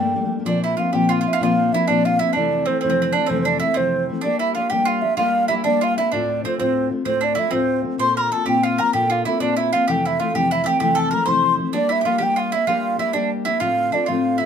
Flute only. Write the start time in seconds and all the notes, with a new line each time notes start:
Already playing: G5
0.47 D5
0.64 E5
0.80 F5
0.95 G5
1.12 F5
1.28 E5
1.43 F5
1.73 E5
1.88 D5
2.06 F5
2.20 E5
2.36 D5
2.67 C5
2.82 C5
3.14 D5
3.29 C5
3.41 C5
3.46 D5
3.61 E5
3.77 C5
4.24 D5
4.40 E5
4.55 F5
4.71 G5
4.88 F5
5.02 E5
5.18 F5
5.48 E5
5.65 D5
5.84 F5
5.98 E5
6.13 D5
6.44 C5
6.59 C5
7.08 C5
7.24 D5
7.39 E5
7.54 C5
8.01 C6
8.17 A#5
8.33 A5
8.49 G5
8.64 F5
8.80 A#5
8.94 G5
9.12 F5
9.26 E5
9.41 D5
9.58 E5
9.73 F5
9.91 G5
10.07 E5
10.20 F5
10.36 G5
10.52 E5
10.67 G5
10.82 G5
10.99 A5
11.14 A#5
11.29 C6
11.76 D5
11.92 E5
12.07 F5
12.23 G5
12.39 F5
12.53 E5
12.68 F5
13.00 E5
13.14 D5
13.46 E5
13.61 F5
13.94 D5
14.09 F5
14.40 E5